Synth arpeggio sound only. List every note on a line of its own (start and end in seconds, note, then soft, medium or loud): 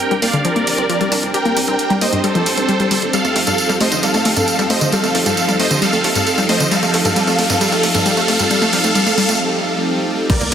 0.11 0.16 G3 loud
0.22 0.29 A#3 medium
0.33 0.36 D3 loud
0.45 0.48 F3 loud
0.56 0.61 A#3 medium
0.78 0.83 C4 medium
0.89 0.94 F3 loud
1.01 1.05 G3 loud
1.12 1.19 D4 loud
1.34 1.39 G4 medium
1.45 1.50 A#3 medium
1.57 1.60 G3 medium
1.68 1.73 C4 medium
1.90 1.95 G3 loud
2.01 2.06 A#3 medium
2.13 2.16 G2 medium
2.24 2.27 G3 loud
2.35 2.38 F3 medium
2.57 2.62 C4 medium
2.69 2.73 G3 loud
2.80 2.85 G3 loud
2.91 2.94 G3 medium
3.13 3.18 G3 medium
3.25 3.29 A3 medium
3.36 3.43 A3 medium
3.47 3.52 G2 medium
3.69 3.74 G3 medium
3.81 3.88 A3 medium
3.92 3.95 D3 medium
4.03 4.08 G3 loud
4.14 4.19 A3 medium
4.25 4.33 A3 medium
4.36 4.41 G2 medium
4.59 4.64 G3 loud
4.70 4.77 A3 medium
4.81 4.84 D3 medium
4.92 4.97 G3 loud
5.03 5.08 A3 medium
5.15 5.22 A3 medium
5.26 5.31 G2 medium
5.48 5.53 G3 loud
5.59 5.67 A3 medium
5.71 5.74 D3 loud
5.82 5.87 G3 loud
5.93 5.98 A3 medium
6.04 6.12 A3 medium
6.15 6.20 G2 medium
6.38 6.43 G3 loud
6.49 6.56 A3 medium
6.60 6.63 D3 loud
6.71 6.76 G3 loud
6.83 6.88 A3 medium
6.94 7.01 A3 medium
7.05 7.10 G2 medium
7.16 7.21 G3 loud
7.27 7.32 A3 medium
7.39 7.46 A3 medium
7.50 7.55 G2 medium
7.61 7.66 G3 loud
7.72 7.77 A3 medium
7.83 7.91 A3 medium
7.95 8.00 G2 medium
8.06 8.11 G3 loud
8.17 8.22 A3 medium
8.28 8.36 A3 medium
8.39 8.44 G2 medium
8.51 8.55 G3 loud
8.62 8.67 A3 medium
8.73 8.78 G3 loud
8.84 8.89 A3 medium
8.95 9.00 G3 loud
9.06 9.11 A3 medium
9.18 9.23 G3 loud
9.29 9.34 A3 medium
10.30 10.35 G3 loud
10.41 10.46 A#3 medium